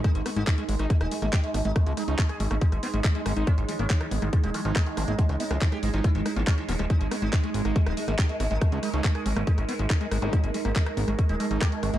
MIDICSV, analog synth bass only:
0, 0, Header, 1, 2, 480
1, 0, Start_track
1, 0, Tempo, 428571
1, 48, Time_signature, 4, 2, 24, 8
1, 13421, End_track
2, 0, Start_track
2, 0, Title_t, "Analog synth bass"
2, 0, Program_c, 0, 38
2, 168, Note_on_c, 0, 32, 74
2, 254, Note_off_c, 0, 32, 0
2, 408, Note_on_c, 0, 32, 88
2, 493, Note_off_c, 0, 32, 0
2, 768, Note_on_c, 0, 32, 104
2, 853, Note_off_c, 0, 32, 0
2, 888, Note_on_c, 0, 32, 81
2, 974, Note_off_c, 0, 32, 0
2, 1128, Note_on_c, 0, 27, 73
2, 1213, Note_off_c, 0, 27, 0
2, 1369, Note_on_c, 0, 32, 89
2, 1454, Note_off_c, 0, 32, 0
2, 1728, Note_on_c, 0, 32, 93
2, 1813, Note_off_c, 0, 32, 0
2, 1848, Note_on_c, 0, 32, 80
2, 1933, Note_off_c, 0, 32, 0
2, 2088, Note_on_c, 0, 37, 81
2, 2173, Note_off_c, 0, 37, 0
2, 2328, Note_on_c, 0, 37, 84
2, 2413, Note_off_c, 0, 37, 0
2, 2688, Note_on_c, 0, 32, 98
2, 2773, Note_off_c, 0, 32, 0
2, 2809, Note_on_c, 0, 32, 84
2, 2894, Note_off_c, 0, 32, 0
2, 3049, Note_on_c, 0, 32, 73
2, 3134, Note_off_c, 0, 32, 0
2, 3289, Note_on_c, 0, 32, 87
2, 3374, Note_off_c, 0, 32, 0
2, 3649, Note_on_c, 0, 32, 95
2, 3734, Note_off_c, 0, 32, 0
2, 3769, Note_on_c, 0, 32, 81
2, 3854, Note_off_c, 0, 32, 0
2, 4008, Note_on_c, 0, 32, 82
2, 4093, Note_off_c, 0, 32, 0
2, 4249, Note_on_c, 0, 32, 86
2, 4334, Note_off_c, 0, 32, 0
2, 4608, Note_on_c, 0, 32, 101
2, 4693, Note_off_c, 0, 32, 0
2, 4728, Note_on_c, 0, 32, 85
2, 4813, Note_off_c, 0, 32, 0
2, 4969, Note_on_c, 0, 27, 70
2, 5054, Note_off_c, 0, 27, 0
2, 5209, Note_on_c, 0, 32, 88
2, 5294, Note_off_c, 0, 32, 0
2, 5568, Note_on_c, 0, 32, 101
2, 5653, Note_off_c, 0, 32, 0
2, 5688, Note_on_c, 0, 32, 80
2, 5773, Note_off_c, 0, 32, 0
2, 5928, Note_on_c, 0, 37, 80
2, 6013, Note_off_c, 0, 37, 0
2, 6168, Note_on_c, 0, 37, 86
2, 6253, Note_off_c, 0, 37, 0
2, 6528, Note_on_c, 0, 32, 97
2, 6613, Note_off_c, 0, 32, 0
2, 6648, Note_on_c, 0, 32, 85
2, 6733, Note_off_c, 0, 32, 0
2, 6888, Note_on_c, 0, 32, 79
2, 6973, Note_off_c, 0, 32, 0
2, 7128, Note_on_c, 0, 32, 85
2, 7213, Note_off_c, 0, 32, 0
2, 7488, Note_on_c, 0, 27, 103
2, 7573, Note_off_c, 0, 27, 0
2, 7608, Note_on_c, 0, 27, 81
2, 7693, Note_off_c, 0, 27, 0
2, 7848, Note_on_c, 0, 32, 80
2, 7933, Note_off_c, 0, 32, 0
2, 8088, Note_on_c, 0, 32, 81
2, 8173, Note_off_c, 0, 32, 0
2, 8448, Note_on_c, 0, 32, 92
2, 8533, Note_off_c, 0, 32, 0
2, 8568, Note_on_c, 0, 32, 85
2, 8653, Note_off_c, 0, 32, 0
2, 8808, Note_on_c, 0, 27, 78
2, 8893, Note_off_c, 0, 27, 0
2, 9048, Note_on_c, 0, 32, 85
2, 9133, Note_off_c, 0, 32, 0
2, 9409, Note_on_c, 0, 32, 99
2, 9494, Note_off_c, 0, 32, 0
2, 9528, Note_on_c, 0, 32, 81
2, 9613, Note_off_c, 0, 32, 0
2, 9768, Note_on_c, 0, 37, 81
2, 9854, Note_off_c, 0, 37, 0
2, 10008, Note_on_c, 0, 37, 87
2, 10093, Note_off_c, 0, 37, 0
2, 10368, Note_on_c, 0, 32, 99
2, 10454, Note_off_c, 0, 32, 0
2, 10489, Note_on_c, 0, 32, 86
2, 10574, Note_off_c, 0, 32, 0
2, 10729, Note_on_c, 0, 32, 75
2, 10814, Note_off_c, 0, 32, 0
2, 10969, Note_on_c, 0, 32, 85
2, 11054, Note_off_c, 0, 32, 0
2, 11328, Note_on_c, 0, 32, 96
2, 11413, Note_off_c, 0, 32, 0
2, 11448, Note_on_c, 0, 32, 82
2, 11534, Note_off_c, 0, 32, 0
2, 11688, Note_on_c, 0, 32, 79
2, 11773, Note_off_c, 0, 32, 0
2, 11928, Note_on_c, 0, 32, 82
2, 12013, Note_off_c, 0, 32, 0
2, 12288, Note_on_c, 0, 32, 97
2, 12373, Note_off_c, 0, 32, 0
2, 12408, Note_on_c, 0, 32, 82
2, 12493, Note_off_c, 0, 32, 0
2, 12648, Note_on_c, 0, 27, 75
2, 12733, Note_off_c, 0, 27, 0
2, 12888, Note_on_c, 0, 32, 92
2, 12974, Note_off_c, 0, 32, 0
2, 13248, Note_on_c, 0, 32, 95
2, 13333, Note_off_c, 0, 32, 0
2, 13368, Note_on_c, 0, 32, 81
2, 13421, Note_off_c, 0, 32, 0
2, 13421, End_track
0, 0, End_of_file